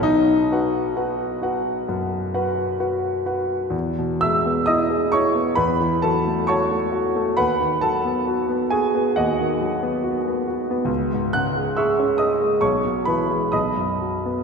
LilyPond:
<<
  \new Staff \with { instrumentName = "Grand piano" } { \time 4/4 \key b \mixolydian \tempo 4 = 66 dis'2. r4 | r8 <e'' e'''>8 <dis'' dis'''>8 <cis'' cis'''>8 <b' b''>8 <a' a''>8 <cis'' a'' cis'''>4 | <b' fis'' b''>8 <a' a''>4 <gis' gis''>8 <fis' dis'' fis''>4. r8 | r8 <fis'' fis'''>8 <e'' cis''' e'''>8 <dis'' dis'''>8 <cis'' cis'''>8 <b' b''>8 <dis'' b'' dis'''>4 | }
  \new Staff \with { instrumentName = "Grand piano" } { \time 4/4 \key b \mixolydian b,,8 <fis' b' fis''>8 <fis' b' fis''>8 <fis' b' fis''>8 fis,8 <fis' b' fis''>8 <fis' b' fis''>8 <fis' b' fis''>8 | e,16 b,16 gis16 b16 e'16 gis'16 e'16 b16 e,16 e16 fis16 a16 fis'16 a16 fis'16 a16 | dis,16 dis16 fis16 b16 fis'16 b16 fis'16 b16 dis,16 dis16 fis16 b16 fis'16 b16 fis'16 b16 | cis,16 gis,16 cis16 gis16 gis'16 cis'16 gis'16 gis16 b,,16 b,16 e16 gis16 b,,16 fis,16 fis16 b16 | }
>>